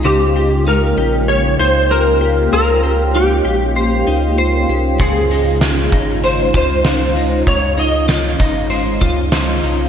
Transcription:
<<
  \new Staff \with { instrumentName = "Electric slide guitar" } { \time 4/4 \key des \lydian \tempo 4 = 97 g'4 bes'4 des''8 c''8 bes'4 | bes'4 g'2 r4 | aes'2 c''8 c''4. | des''8 ees''2. r8 | }
  \new Staff \with { instrumentName = "Clean electric guitar" } { \time 4/4 \key des \lydian <des c''>8 g'8 ees'8 g'4 ees'8 c''8 g'8 | c''8 g'8 ees'8 g'8 c''8 ees'8 c''8 g'8 | <des c''>8 ees'8 f'8 ees'8 c''8 f'8 c''8 ees'8~ | ees'8 ees'8 f'8 ees'8 c''8 f'8 c''8 ees'8 | }
  \new Staff \with { instrumentName = "Ambient pad" } { \time 4/4 \key des \lydian << { <aes bes des' f' g'>1~ | <aes bes des' f' g'>1~ | <aes bes des' f' g'>1~ | <aes bes des' f' g'>1 | } \\ { r1 | r1 | ees'1~ | ees'1 | } >> }
  \new Staff \with { instrumentName = "Sub bass" } { \clef bass \time 4/4 \key des \lydian des,4. bes,,4 des,4. | des,4. bes,,4 des,4 c,8 | des,4. aes,,4 des,4. | des,4. aes,,4 des,4 c,8 | }
  \new DrumStaff \with { instrumentName = "Drums" } \drummode { \time 4/4 r4 r4 r4 r4 | r4 r4 r4 r4 | <hh bd>8 hh8 <hh sn>8 <hh bd>8 hh8 <hh bd>8 <hh sn>8 hh8 | <hh bd>8 hh8 <hh sn>8 <hh bd>8 hh8 <hh bd>8 <hh sn>8 hh8 | }
>>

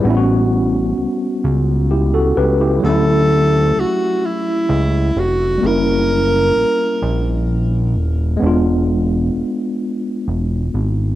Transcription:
<<
  \new Staff \with { instrumentName = "Tenor saxophone" } { \time 6/8 \key d \major \tempo 4. = 43 r2. | a'4 fis'8 e'4 fis'8 | ais'2 r4 | r2. | }
  \new Staff \with { instrumentName = "Tine electric piano" } { \time 6/8 \key d \major << { r2 <e' g'>16 <fis' a'>16 <g' b'>16 <e' g'>16~ | <e' g'>16 r2 r8. | r2. | r2. | } \\ { <g b cis' e' fis'>2. | <fis a cis' e'>2. | <g ais cis' e'>2. | <gis b d' f'>2. | } >> }
  \new Staff \with { instrumentName = "Analog synth bass" } { \clef bass \time 6/8 \key d \major a,,4 cis,8 cis,4 cis,8 | d,4 cis,8 r8 cis,8 f,,8 | fis,,4 ais,,8 ais,,4 ees,,8 | e,,4 e,,8 r8 e,,8 gis,,8 | }
>>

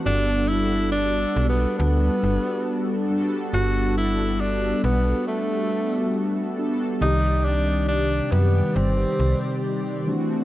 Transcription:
<<
  \new Staff \with { instrumentName = "Analog polysynth" } { \time 4/4 \key g \major \tempo 4 = 69 <g b d' fis' a'>2.~ <g b d' fis' a'>8 <g b d' fis' a'>8 | <g b d' fis' a'>2.~ <g b d' fis' a'>8 <g b d' fis' a'>8 | <c ees g g' d''>2.~ <c ees g g' d''>8 <e a c' d' fis'>8 | }
  \new Staff \with { instrumentName = "Tenor saxophone" } { \time 4/4 \key g \major d'8 e'8 \tuplet 3/2 { d'4 b8 } b4. r8 | fis'8 e'8 d'8 b8 a4. r8 | ees'8 d'8 d'8 b8 c'4 r4 | }
  \new Staff \with { instrumentName = "FM bass" } { \clef bass \time 4/4 \key g \major g,,4. b,,8 d,8 g,,8 r4 | g,,4. b,,8 r2 | c,4. fis,8 g,,8 c,8 r4 | }
>>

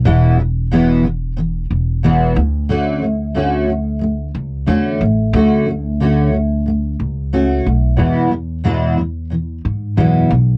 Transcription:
<<
  \new Staff \with { instrumentName = "Steel-string acoustic guitar" } { \clef bass \time 4/4 \key e \major \tempo 4 = 91 <e, b, e gis b e'>8 <e, b,>8 <e, b, e gis b e'>8 <e, b, e>8 <e, b, e>8 r8 <e, b, e gis b e'>8 <d a>8 | <d a cis' fis'>8 <d a>8 <d a cis' fis'>8 <d a>8 <d a>8 r8 <d a cis' fis'>8 <d a>8 | <d a cis' fis'>8 <d a>8 <d a cis' fis'>8 <d a>8 <d a>8 r8 <a cis' fis'>8 <d a>8 | <e, b, e gis b e'>8 <e, b, e>8 <e, b, e gis b e'>8 <e, b, e>8 <e, b, e>8 r8 <e, b, e gis b e'>8 <e, b, e>8 | }
  \new Staff \with { instrumentName = "Upright bass" } { \clef bass \time 4/4 \key e \major e,,2~ e,,8 e,,4 d,8~ | d,2~ d,8 cis,8 e,8 a,,8 | d,2~ d,8 cis,4 b,,8 | e,2~ e,8 gis,8 fis,8 b,,8 | }
>>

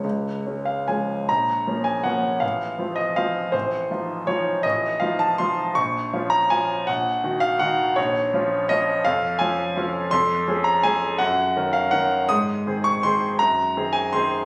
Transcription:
\new Staff \with { instrumentName = "Grand piano" } { \time 3/4 \key des \major \tempo 4 = 163 << { des''4. f''8 aes''4 | \key bes \minor bes''4. aes''8 ges''4 | f''4. ees''8 f''4 | c''2 des''4 |
ees''4 f''8 a''8 c'''4 | des'''4. bes''8 aes''4 | ges''4. f''8 ges''4 | des''2 ees''4 |
f''4 aes''8 r4. | \key aes \mixolydian c'''4. bes''8 aes''4 | ges''4. f''8 ges''4 | ees'''4. des'''8 c'''4 |
bes''4. aes''8 c'''4 | } \\ { des,4 <aes des'>4 <f aes des'>4 | bes,,4 <f bes des'>4 <f bes des'>4 | a,,4 <f c' f'>4 <f c' f'>4 | a,,4 <f ees' f'>4 <f ees' f'>4 |
a,,4 <f ees' f'>4 <f ees' f'>4 | bes,,4 <f des' f'>4 <f des' f'>4 | bes,,4 <ees ees' ges'>4 <ees ees' ges'>4 | bes,,4 <f des' f'>4 <f des' f'>4 |
f,4 <f des' f'>4 <f des' f'>4 | f,4 <f des' aes'>4 <f des' aes'>4 | ges,4 <ees des' bes'>4 <ees des' bes'>4 | aes,4 <ees c' aes'>4 <ees c' aes'>4 |
ges,4 <ees c' aes'>4 <ees c' aes'>4 | } >> }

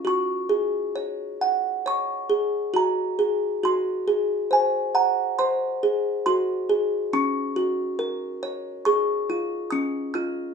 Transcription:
\new Staff \with { instrumentName = "Music box" } { \time 4/4 \key fis \major \tempo 4 = 68 << { cis'''2 cis'''4 ais''4 | bis''4 gis''8 ais''8 bis''4 bis''4 | cis'''2 cis'''4 dis'''8 eis'''8 | } \\ { fis'8 gis'8 cis''8 fis''8 cis''8 gis'8 fis'8 gis'8 | fis'8 gis'8 bis'8 fis''8 bis'8 gis'8 fis'8 gis'8 | cis'8 fis'8 ais'8 cis''8 gis'8 eis'8 cis'8 eis'8 | } >> }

